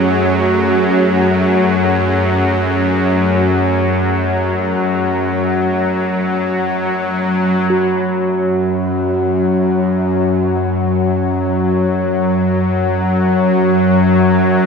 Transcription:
Already playing: synth drone F#2 F#3, analog synth pad A3 C#4 F#4 G#4, singing bowl A3
7.68 synth drone F#2 F#3, singing bowl F#4

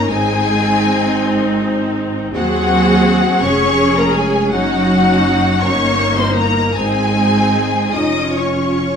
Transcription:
0.08 double bass section G#1, cello section G#3, viola section C4 D#4, violin section G#4 G#5
2.34 double bass section D#2, cello section F#3, viola section C4 G#4, violin section F#4 F#5
3.42 double bass section F1, viola section C#4 G#4, cello section C#4, violin section C#5 C#6
3.98 cello section A#3, violin section A#4 A#5
4.15 cello section G#3, violin section G#4 G#5
4.51 double bass section F#1, cello section F#3, viola section C#4 D#4, violin section F#4 F#5
5.62 double bass section G1, viola section A#3 D#4, cello section C#4, violin section C#5 C#6
6.17 cello section C4, violin section C5 C6
6.36 cello section A#3, violin section A#4 A#5
6.76 double bass section G#1, cello section G#3, viola section C4 D#4, violin section G#4 G#5
7.94 double bass section F1, viola section C#4 F4, cello section D#4, violin section D#5 D#6
8.35 cello section C#4, violin section C#5 C#6

